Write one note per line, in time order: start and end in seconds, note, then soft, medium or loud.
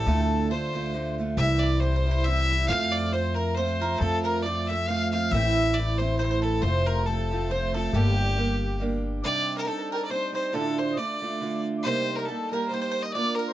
0.00 0.20 A4 medium
0.00 0.50 A4 medium
0.00 0.51 A4 loud
0.06 1.35 D2 medium
0.06 0.50 D2 medium
0.06 0.51 A2 medium
0.06 0.48 D3 medium
0.06 0.49 A3 medium
0.06 0.50 D4 medium
0.06 0.51 F4 medium
0.19 0.22 G4 medium
0.19 0.52 A4 medium
0.49 0.72 D3 medium
0.49 0.73 A3 soft
0.49 0.74 D4 soft
0.49 0.74 F4 medium
0.49 1.15 C5 medium
0.73 0.93 D3 medium
0.73 0.93 A3 medium
0.73 0.94 D4 medium
0.73 0.95 F4 medium
0.94 1.17 D3 medium
0.94 1.18 A3 medium
0.94 1.19 D4 medium
0.94 1.19 F4 medium
1.18 1.38 D3 medium
1.18 1.38 A3 medium
1.18 1.39 D4 medium
1.18 1.39 F4 medium
1.37 2.66 C2 medium
1.37 1.81 C3 medium
1.37 1.79 E3 medium
1.37 1.81 G3 medium
1.37 1.82 C4 medium
1.37 1.82 E4 medium
1.37 1.61 E5 loud
1.37 1.61 E5 medium
1.59 1.82 D5 loud
1.59 1.82 D5 medium
1.64 1.83 D5 medium
1.80 2.04 E3 medium
1.80 2.05 G3 soft
1.80 2.06 C4 medium
1.80 2.07 E4 medium
1.80 2.26 C5 medium
1.80 1.95 C5 medium
1.80 2.28 C5 medium
1.96 2.10 C5 medium
2.05 2.25 E3 medium
2.05 2.26 G3 medium
2.05 2.26 C4 medium
2.05 2.27 E4 medium
2.11 2.25 C5 medium
2.24 2.48 E3 medium
2.24 2.49 G3 medium
2.24 2.50 C4 medium
2.24 2.68 E5 loud
2.24 2.66 E5 medium
2.24 2.67 E5 medium
2.29 2.51 E4 medium
2.50 2.69 E3 medium
2.50 2.70 G3 medium
2.50 2.69 C4 medium
2.50 2.71 E4 medium
2.68 3.98 F2 medium
2.68 3.11 F3 medium
2.68 3.13 A3 medium
2.68 3.14 C4 medium
2.68 3.14 F4 loud
2.68 2.94 F5 loud
2.68 3.14 F5 loud
2.68 2.92 F5 loud
2.92 3.14 D5 loud
2.92 3.14 D5 medium
3.12 3.55 F3 soft
3.12 3.58 C4 medium
3.12 3.58 F4 medium
3.12 3.36 C5 medium
3.12 3.38 C5 medium
3.12 3.36 C5 medium
3.35 3.56 A#4 medium
3.35 3.55 A#4 medium
3.35 3.57 A#4 medium
3.55 3.80 F3 medium
3.55 3.81 A3 medium
3.55 3.81 C4 medium
3.55 4.00 C5 loud
3.55 4.02 C5 medium
3.55 3.79 C5 loud
3.59 3.82 F4 medium
3.81 4.00 F3 soft
3.81 4.01 A3 medium
3.81 4.01 C4 medium
3.81 4.02 F4 medium
3.81 3.99 A#4 medium
3.99 5.29 F2 medium
3.99 4.44 F3 medium
3.99 4.45 A3 medium
3.99 4.46 C4 medium
3.99 4.22 A4 loud
3.99 4.25 A4 loud
3.99 4.24 A4 medium
4.03 4.45 F4 medium
4.23 4.45 A#4 loud
4.23 4.44 A#4 medium
4.23 4.45 A#4 medium
4.43 4.68 F3 soft
4.43 4.69 A3 medium
4.43 4.70 C4 medium
4.43 4.69 D5 medium
4.43 4.67 D5 medium
4.48 4.70 F4 medium
4.67 4.87 F3 medium
4.67 4.88 E5 medium
4.67 4.88 E5 loud
4.67 4.88 E5 medium
4.71 4.88 A3 medium
4.71 4.89 C4 medium
4.71 4.89 F4 medium
4.87 5.11 F3 medium
4.87 5.12 A3 medium
4.87 5.13 C4 medium
4.87 5.11 F5 loud
4.87 5.11 F5 medium
4.87 5.29 F5 medium
4.91 5.13 F4 medium
5.11 5.32 F3 medium
5.11 5.32 A3 medium
5.11 5.33 C4 medium
5.11 5.33 F5 loud
5.11 5.32 F5 medium
5.15 5.33 F4 medium
5.31 6.60 A1 medium
5.31 5.76 A2 medium
5.31 5.75 E3 medium
5.31 5.79 A3 loud
5.31 5.77 C4 medium
5.31 5.77 E4 medium
5.31 5.76 E5 loud
5.31 5.75 E5 loud
5.31 5.77 E5 medium
5.74 5.98 E3 medium
5.74 5.99 C4 soft
5.74 5.99 D5 loud
5.74 5.99 D5 medium
5.74 5.98 D5 medium
5.79 6.00 A3 medium
5.79 6.01 E4 medium
5.98 6.18 E3 medium
5.98 6.20 A3 medium
5.98 6.19 C4 medium
5.98 6.18 C5 medium
5.98 6.17 C5 medium
6.03 6.21 E4 medium
6.18 6.63 E3 medium
6.18 6.63 A3 medium
6.18 6.62 C4 medium
6.18 6.41 C5 medium
6.18 6.45 C5 loud
6.18 6.23 C5 medium
6.22 6.64 E4 medium
6.22 6.30 C5 medium
6.31 6.41 C5 medium
6.42 6.60 A4 medium
6.42 6.63 A4 medium
6.42 6.64 A4 medium
6.61 7.91 F1 medium
6.61 7.06 F3 medium
6.61 7.07 A3 medium
6.61 7.06 C4 medium
6.61 7.02 C5 medium
6.61 6.84 C5 medium
6.61 6.88 C5 loud
6.65 7.07 F4 medium
6.86 7.08 A#4 loud
6.86 7.05 A#4 medium
7.06 7.30 F3 medium
7.06 7.32 A3 medium
7.06 7.31 C4 medium
7.06 7.46 A4 medium
7.06 7.53 A4 medium
7.06 7.47 A4 medium
7.10 7.32 F4 medium
7.31 7.49 F3 medium
7.31 7.51 A3 medium
7.31 7.50 C4 medium
7.31 7.52 F4 medium
7.49 7.72 F3 medium
7.49 7.74 A3 medium
7.49 7.73 C4 medium
7.49 7.74 C5 medium
7.49 7.73 C5 medium
7.49 7.74 C5 loud
7.54 7.75 F4 medium
7.73 7.93 F3 medium
7.73 7.94 A3 medium
7.73 7.94 C4 medium
7.73 7.94 F4 medium
7.73 7.93 A4 medium
7.73 7.92 A4 medium
7.73 7.97 A4 medium
7.93 9.21 G1 medium
7.93 8.36 G3 medium
7.93 8.37 A#3 medium
7.93 8.38 D4 medium
7.93 8.76 G4 medium
7.93 8.77 G4 medium
7.93 8.81 G4 loud
7.93 8.39 G4 medium
8.36 8.79 G3 soft
8.36 8.80 A#3 medium
8.36 8.82 D4 medium
8.36 8.81 G4 medium
8.80 9.23 G3 medium
8.80 9.24 A#3 medium
8.80 9.25 D4 medium
8.80 9.25 G4 medium
9.22 9.67 C3 medium
9.22 9.65 G3 medium
9.22 9.67 C4 medium
9.22 9.69 D4 medium
9.22 9.67 D#4 medium
9.22 9.58 D5 medium
9.22 9.56 D5 medium
9.22 9.55 D5 loud
9.57 9.67 A#4 medium
9.57 9.66 A#4 medium
9.57 9.68 A#4 medium
9.66 10.08 G3 soft
9.66 10.09 C4 medium
9.66 10.12 D4 soft
9.66 10.10 D#4 medium
9.66 9.91 A4 medium
9.66 9.78 A4 medium
9.66 9.92 A4 medium
9.78 9.93 A4 medium
9.78 9.81 A#4 medium
9.92 9.96 G4 soft
9.92 10.09 A4 medium
9.92 10.04 A#4 medium
9.92 10.10 A#4 medium
10.05 10.12 D5 medium
10.10 10.31 G3 medium
10.10 10.33 C4 medium
10.10 10.34 D4 medium
10.10 10.33 D#4 medium
10.10 10.34 C5 medium
10.10 10.34 C5 loud
10.10 10.33 C5 medium
10.32 10.53 G3 medium
10.32 10.54 C4 soft
10.32 10.53 D4 soft
10.32 10.54 D#4 medium
10.32 10.55 C5 medium
10.53 10.97 D2 medium
10.53 10.97 A2 medium
10.53 10.96 D3 medium
10.53 10.97 A3 medium
10.53 10.98 D4 loud
10.53 10.98 F4 medium
10.53 10.80 A4 loud
10.53 10.79 A4 medium
10.53 10.77 A4 medium
10.78 10.99 C5 medium
10.78 10.91 C5 medium
10.78 10.97 C5 medium
10.92 10.98 D#5 medium
10.97 11.20 D3 medium
10.97 11.21 A3 medium
10.97 11.22 D4 medium
10.97 11.23 F4 soft
10.97 11.61 D5 medium
10.97 11.65 D5 medium
10.97 11.62 D5 medium
11.21 11.40 D3 soft
11.21 11.41 A3 medium
11.21 11.41 D4 medium
11.21 11.42 F4 medium
11.41 11.84 D3 medium
11.41 11.85 A3 medium
11.41 11.85 D4 medium
11.41 11.86 F4 medium
11.78 11.85 D5 medium
11.83 12.28 C3 medium
11.83 12.27 G3 medium
11.83 12.29 A#3 medium
11.83 12.29 D#4 medium
11.83 12.29 G4 medium
11.83 12.17 C5 loud
11.83 12.19 C5 medium
11.83 12.18 C5 medium
12.15 12.27 A#4 medium
12.15 12.28 A#4 medium
12.25 12.51 G3 soft
12.25 12.51 A4 medium
12.25 12.53 A4 medium
12.25 12.51 A4 medium
12.30 12.52 A#3 medium
12.30 12.52 D#4 soft
12.30 12.54 G4 medium
12.49 12.70 G3 medium
12.49 12.71 A#3 medium
12.49 12.67 A#4 medium
12.49 12.61 A#4 medium
12.49 12.72 A#4 medium
12.54 12.72 D#4 medium
12.54 12.73 G4 medium
12.68 13.15 G3 medium
12.68 13.04 C5 loud
12.68 12.79 C5 medium
12.72 13.14 A#3 medium
12.72 13.16 D#4 medium
12.72 13.16 G4 medium
12.72 12.80 C5 medium
12.81 12.88 C5 medium
12.81 12.90 C5 medium
12.89 13.04 C5 medium
12.89 13.05 C5 loud
13.03 13.14 D#5 medium
13.03 13.15 D#5 medium
13.03 13.14 D#5 medium
13.12 13.53 A#3 medium
13.12 13.53 D4 medium
13.12 13.53 F4 medium
13.12 13.36 D5 loud
13.12 13.36 D5 medium
13.12 13.37 D5 medium
13.17 13.53 A#4 medium
13.35 13.53 A#4 loud
13.35 13.47 A#4 medium
13.39 13.53 A#4 medium
13.48 13.52 C5 soft